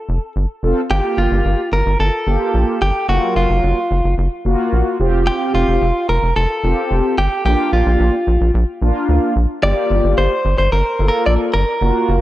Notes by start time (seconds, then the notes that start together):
Already playing: A4
0.09 F1
0.36 G1
0.63 F1 C4 F4 A4
0.90 G1 A#3 F4 G4
1.18 G1 F4
1.31 G1
1.45 G1
1.72 G1 A#4
1.86 G1
2.00 G1 A4
2.27 G1 A#3 F4 G4
2.54 A#1
2.82 G1 G4
3.09 F#1 F#3 A#3 F4 F#4
3.36 F#1 F4
3.50 F#1
3.63 F#1
3.91 F#1
4.04 F#1
4.18 F#1
4.45 F#1 A#3 F4 F#4
4.73 A#1
5.00 F1 C4 F4 G4
5.27 G4
5.54 F1 F4
5.68 F1
5.82 F1
6.09 F1 A#4
6.23 F1
6.36 F1 A4
6.63 F1 C4 F4 G4
6.91 F1
7.18 G1 G4
7.45 A#1 A#3 D4 F4 G4
7.73 A#1 F4
7.86 A#1
8.00 A#1
8.27 A#1
8.41 A#1
8.54 A#1
8.82 A#1 A#3 D4 F4
9.09 D2
9.36 A#1
9.63 G1 A#3 F4 G4 D5
9.91 G1
10.04 G1
10.18 G1 C5
10.45 G1
10.58 G1 C5
10.72 G1 A#4
10.99 G1 A#3 F4 A4
11.08 A#4
11.26 A#1 D5
11.54 G1 A#4
11.81 F#1 A#3 F4 F#4
12.09 F#1